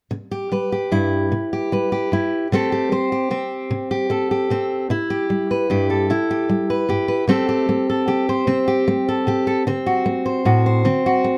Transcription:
steel-string acoustic guitar
0.11 C3
0.31 G4
0.52 G3 B4
0.72 G4
0.91 G2 E4
1.32 C3
1.53 G4
1.72 G3 B4
1.92 G4
2.12 G2 E4
2.52 C3 A3 C4 G4 A4
2.72 G4
2.92 A3 C5
3.12 G4
3.31 C3 C4
3.71 C3
3.91 G4
4.10 A3 A4
4.31 G4
4.50 C3 C4
4.90 C3 E4
5.10 G4
5.30 G3
5.51 B4
5.70 G2 G4
5.90 A4
6.10 C3 E4
6.31 G4
6.49 G3
6.70 B4
6.89 G2 G4
7.08 B4
7.28 C3 A3 C4 G4 A4
7.49 G4
7.69 A3
7.90 A4
8.07 C3 G4
8.29 C5
8.47 C3 C4
8.68 G4
8.88 A3
9.09 A4
9.27 C3 G4
9.47 A4
9.67 D3 C4
9.86 F#4
10.06 A3
10.26 C5
10.45 A2 F#4
10.66 C5
10.85 D3 C4
11.06 F#4
11.24 A3

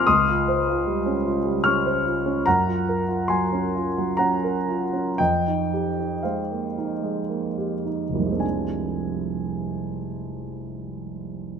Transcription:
grand piano
0.07 C#2 C6 D#6
0.29 F4
0.48 C5
0.69 F4
0.87 G3
1.06 C#4
1.26 F4
1.45 G3
1.64 C#4 C#6 F6
1.86 C5
2.06 F4
2.26 C#4
2.46 F#2 F#5 A#5
2.67 F4
2.89 A#4
3.08 F4
3.28 F#3 G#5 C6
3.53 C#4
3.75 F4
3.98 F#3
4.17 C#4 F#5 A#5
4.44 A#4
4.69 F4
4.94 C#4
5.18 F2 D#5 G5
5.48 D#4
5.73 G4
6.00 D#4
6.23 G#3 C5 F5
6.51 A#3
6.78 D#4
7.03 G#3
7.29 A#3
7.58 G4
7.85 D#4
8.10 F1
8.14 C2 A#3
8.20 F3
8.26 G#3
8.31 C4
8.36 D4 G#5

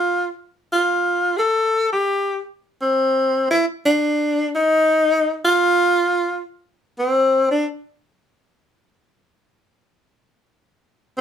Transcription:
tenor saxophone
Already playing: F4
0.72 F4
1.37 G#4 A4
1.93 G4
2.82 C4
3.51 E4
3.85 D4
4.55 D#4
5.45 F4
6.99 C4
7.51 D4
11.18 C4

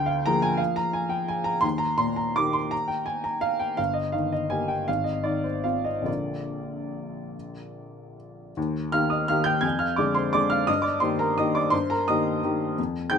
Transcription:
upright piano
Already playing: D2 D3 F5 G5
0.06 F5
0.26 F3 A#3 G#4 A#5
0.42 G#5
0.57 F5
0.76 A#5
0.93 G#5
1.09 G5
1.28 G#5
1.44 A#5
1.61 D#2 C6
1.78 A#5
1.98 A#2 C6
2.16 A#5
2.36 D#3 A#3 G4 D6
2.53 C6
2.71 A#5
2.88 G5
3.06 G#5
3.24 A#5
3.41 F5
3.59 G5
3.77 G1 F5
3.94 D#5
4.12 D#3 F5
4.32 D#5
4.50 A#3 G4 G#5
4.68 G5
4.88 G#1 F5
5.04 D#5
5.24 D#3 D5
5.44 C5
5.64 C4 F4 F5
5.84 D#5
6.02 A#1 D3 A#3 F4 D5
8.57 D#2
8.92 D#3 A#3 G4 F5 F6
9.10 D#5 D#6
9.28 D#3 A#3 G4 F5 F6
9.44 G5 G6
9.61 F2 G#5 G#6
9.79 F5 F6
9.96 D3 G#3 G#4 D5 D6
10.15 C5 C6
10.33 D3 G#3 G#4 D5 D6
10.50 F5 F6
10.67 G2 D#5 D#6
10.82 D5 D6
11.00 D#3 A#3 G4 C5 C6
11.19 A#4 A#5
11.38 D#3 A#3 G4 D#5 D#6
11.55 D5 D6
11.70 G2 C5 C6
11.90 A#4 A#5
12.08 D#3 A#3 G4 D#5 D#6
12.44 D#3 A#3 G4
12.78 F2
13.10 D#3 C4 G#4 G5 G6

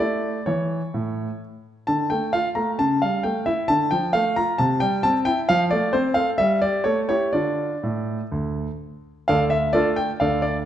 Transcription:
grand piano
0.00 A3 E4 D5
0.46 E3 C#5
0.94 A2
1.87 D3 A5
2.10 A3 G5
2.33 F4 F5
2.55 A3 A#5
2.79 C#3 A5
3.02 G3 F5
3.23 A3 G5
3.46 E4 E5
3.68 D3 A5
3.91 F3 G5
4.13 A3 F5
4.36 F4 A#5
4.58 C3 A5
4.80 G3 G5
5.03 C4 A5
5.25 E4 G5
5.49 F3 F5
5.71 A3 D5
5.93 C4 C5
6.14 A4 F5
6.38 G3 E5
6.62 G4 D5
6.84 A3 C#5
7.09 E4 G4 C#5
7.33 D3 D4 F4 D5
7.83 A2
8.32 D2
9.28 D2 D3 A4 D5 F5
9.50 E5
9.73 A3 D4 F4 A4 D5
9.96 G5
10.20 D2 D3 A4 D5 F5
10.42 D5

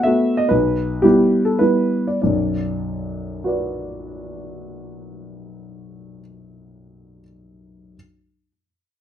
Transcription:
grand piano
0.03 A3 B3 F#4 E5
0.37 D#5
0.49 B1 B4
1.02 G3 B3 E4 G4
1.45 A4
1.59 G3 B3 E4 B4
2.07 D5
2.22 B1 F#2 D5
3.44 F#4 B4 D5

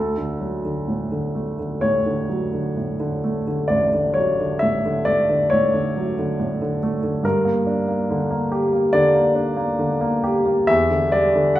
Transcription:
grand piano
Already playing: D2 A4
0.18 D3
0.40 F#3
0.65 D3
0.88 A2
1.12 D3
1.35 A3
1.59 D3
1.81 A2 C#5
2.06 D3
2.30 F#3
2.53 D3
2.77 A2
3.00 D3
3.24 A3
3.47 D3
3.68 A1 D5
3.93 D3
4.14 F#3 C#5
4.40 D3
4.59 A2 E5
4.85 D3
5.05 A3 D5
5.29 D3
5.50 A2 C#5
5.74 D3
5.97 F#3
6.19 D3
6.40 A2
6.62 D3
6.83 A3
7.03 D3
7.23 G2 A#4
7.45 A#3
7.67 D4
7.88 A#3
8.10 D3
8.31 A#3
8.52 G4
8.73 A#3
8.93 D3 D5
9.14 A#3
9.35 D4
9.57 A#3
9.79 D3
10.01 A#3
10.24 G4
10.46 A#3
10.67 E2 E5
10.91 D3
11.12 G3 D5
11.35 D3
11.56 F#5

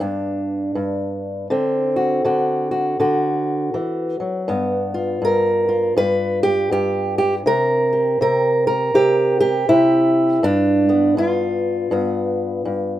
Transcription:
steel-string acoustic guitar
Already playing: B3 G4
0.00 G2 D4
0.75 G2
1.50 D3 C4
1.96 F#4
2.25 D3 F#4
2.71 F#4
3.00 D3 F#4
3.74 E3
4.20 F#3
4.48 G2 B3
4.94 F4
5.22 G2 A#4
5.69 F4
5.97 G2 B4
6.43 G4
6.71 G2 G4
7.18 G4
7.46 C3 A#4
7.93 G4
8.21 C3 A#4
8.67 A#4
8.94 C3 G4
9.40 G4
9.69 C3 E4
10.43 G2 D4
10.89 B3
11.17 G2 F4
11.91 G2 B3
12.65 G2

